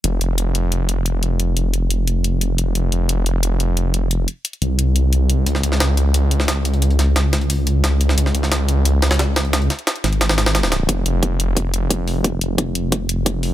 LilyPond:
<<
  \new Staff \with { instrumentName = "Detuned saw bass" } { \clef bass \time 4/4 \key f \minor \tempo 4 = 177 f,,8 f,,2.~ f,,8~ | f,,8 f,,2.~ f,,8 | f,,8 f,,2.~ f,,8~ | f,,8 r4 c,2~ c,8 |
des,8 des,2.~ des,8~ | des,8 des,2.~ des,8 | des,8 des,2.~ des,8~ | des,8 r4 aes,,2~ aes,,8 |
f,,8 f,,2.~ f,,8~ | f,,8 f,,2.~ f,,8 | }
  \new DrumStaff \with { instrumentName = "Drums" } \drummode { \time 4/4 hh8 hh8 hh8 hh8 hh8 hh8 hh8 hh8 | hh8 hh8 hh8 hh8 hh8 hh8 hh8 hh8 | hh8 hh8 hh8 hh8 hh8 hh8 hh8 hh8 | hh8 hh8 hh16 hh16 hh8 hh8 hh8 hh8 hh8 |
hh16 sn16 hh16 sn16 <hh sn>8 hh8 hh8 hh16 sn16 <hh sn>8 hh16 hh16 | hh16 hh16 <hh sn>8 <hh sn>8 <hh sn>16 hh16 <hh hho>8 hh8 <hh sn>8 hh16 sn16 | hh16 sn16 hh16 sn16 <hh sn>8 hh8 hh8 <hh sn>16 <hh sn>16 <hh sn>8 <hh sn>16 hh16 | <hh sn>16 hh16 <hh sn>16 hh16 <hh sn>16 hh16 <hh sn>16 hh16 <hh sn>16 <hh sn>16 <hh sn>16 <hh sn>16 <hh sn>16 <hh sn>16 <hh sn>8 |
<hh bd>8 hh8 <hh bd>8 hh8 <hh bd>8 hh8 <hh bd>8 hho8 | <hh bd>8 hh8 <hh bd>8 hh8 <hh bd>8 hh8 <hh bd>8 hho8 | }
>>